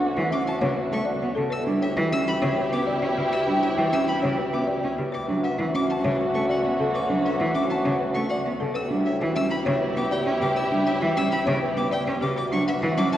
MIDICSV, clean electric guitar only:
0, 0, Header, 1, 2, 480
1, 0, Start_track
1, 0, Tempo, 301508
1, 2418, Time_signature, 6, 2, 24, 8
1, 20975, End_track
2, 0, Start_track
2, 0, Title_t, "Clean electric guitar"
2, 0, Program_c, 0, 27
2, 503, Note_on_c, 0, 61, 85
2, 812, Note_off_c, 0, 61, 0
2, 989, Note_on_c, 0, 71, 68
2, 1294, Note_off_c, 0, 71, 0
2, 1467, Note_on_c, 0, 69, 64
2, 1704, Note_on_c, 0, 66, 79
2, 1773, Note_off_c, 0, 69, 0
2, 2012, Note_off_c, 0, 66, 0
2, 2168, Note_on_c, 0, 69, 77
2, 2487, Note_off_c, 0, 69, 0
2, 2655, Note_on_c, 0, 62, 90
2, 2890, Note_on_c, 0, 73, 73
2, 2969, Note_off_c, 0, 62, 0
2, 3208, Note_off_c, 0, 73, 0
2, 3379, Note_on_c, 0, 61, 95
2, 3691, Note_off_c, 0, 61, 0
2, 3860, Note_on_c, 0, 73, 78
2, 4171, Note_off_c, 0, 73, 0
2, 4338, Note_on_c, 0, 71, 72
2, 4575, Note_on_c, 0, 67, 75
2, 4650, Note_off_c, 0, 71, 0
2, 4889, Note_off_c, 0, 67, 0
2, 5050, Note_on_c, 0, 71, 70
2, 5367, Note_off_c, 0, 71, 0
2, 5532, Note_on_c, 0, 62, 82
2, 5770, Note_on_c, 0, 73, 65
2, 5848, Note_off_c, 0, 62, 0
2, 6087, Note_off_c, 0, 73, 0
2, 6255, Note_on_c, 0, 61, 82
2, 6569, Note_off_c, 0, 61, 0
2, 6732, Note_on_c, 0, 73, 62
2, 7048, Note_off_c, 0, 73, 0
2, 7215, Note_on_c, 0, 71, 65
2, 7456, Note_on_c, 0, 67, 67
2, 7529, Note_off_c, 0, 71, 0
2, 7769, Note_off_c, 0, 67, 0
2, 7939, Note_on_c, 0, 71, 64
2, 8251, Note_off_c, 0, 71, 0
2, 8413, Note_on_c, 0, 62, 87
2, 8646, Note_on_c, 0, 71, 64
2, 8728, Note_off_c, 0, 62, 0
2, 8966, Note_off_c, 0, 71, 0
2, 9145, Note_on_c, 0, 61, 86
2, 9453, Note_off_c, 0, 61, 0
2, 9621, Note_on_c, 0, 71, 67
2, 9932, Note_off_c, 0, 71, 0
2, 10106, Note_on_c, 0, 69, 71
2, 10347, Note_on_c, 0, 66, 65
2, 10413, Note_off_c, 0, 69, 0
2, 10653, Note_off_c, 0, 66, 0
2, 10824, Note_on_c, 0, 69, 70
2, 11132, Note_off_c, 0, 69, 0
2, 11298, Note_on_c, 0, 62, 89
2, 11535, Note_on_c, 0, 71, 73
2, 11610, Note_off_c, 0, 62, 0
2, 11849, Note_off_c, 0, 71, 0
2, 12014, Note_on_c, 0, 61, 82
2, 12329, Note_off_c, 0, 61, 0
2, 12499, Note_on_c, 0, 71, 66
2, 12811, Note_off_c, 0, 71, 0
2, 12970, Note_on_c, 0, 69, 66
2, 13207, Note_on_c, 0, 66, 65
2, 13287, Note_off_c, 0, 69, 0
2, 13526, Note_off_c, 0, 66, 0
2, 13700, Note_on_c, 0, 69, 72
2, 14011, Note_off_c, 0, 69, 0
2, 14179, Note_on_c, 0, 62, 90
2, 14419, Note_on_c, 0, 73, 68
2, 14491, Note_off_c, 0, 62, 0
2, 14731, Note_off_c, 0, 73, 0
2, 14902, Note_on_c, 0, 61, 88
2, 15212, Note_off_c, 0, 61, 0
2, 15371, Note_on_c, 0, 73, 74
2, 15688, Note_off_c, 0, 73, 0
2, 15853, Note_on_c, 0, 71, 69
2, 16106, Note_on_c, 0, 67, 68
2, 16169, Note_off_c, 0, 71, 0
2, 16413, Note_off_c, 0, 67, 0
2, 16582, Note_on_c, 0, 71, 72
2, 16892, Note_off_c, 0, 71, 0
2, 17062, Note_on_c, 0, 62, 97
2, 17305, Note_on_c, 0, 73, 69
2, 17372, Note_off_c, 0, 62, 0
2, 17613, Note_off_c, 0, 73, 0
2, 17782, Note_on_c, 0, 61, 86
2, 18092, Note_off_c, 0, 61, 0
2, 18261, Note_on_c, 0, 73, 78
2, 18571, Note_off_c, 0, 73, 0
2, 18740, Note_on_c, 0, 71, 72
2, 18971, Note_on_c, 0, 67, 78
2, 19051, Note_off_c, 0, 71, 0
2, 19288, Note_off_c, 0, 67, 0
2, 19458, Note_on_c, 0, 71, 80
2, 19770, Note_off_c, 0, 71, 0
2, 19939, Note_on_c, 0, 62, 96
2, 20178, Note_on_c, 0, 71, 77
2, 20251, Note_off_c, 0, 62, 0
2, 20490, Note_off_c, 0, 71, 0
2, 20654, Note_on_c, 0, 61, 100
2, 20969, Note_off_c, 0, 61, 0
2, 20975, End_track
0, 0, End_of_file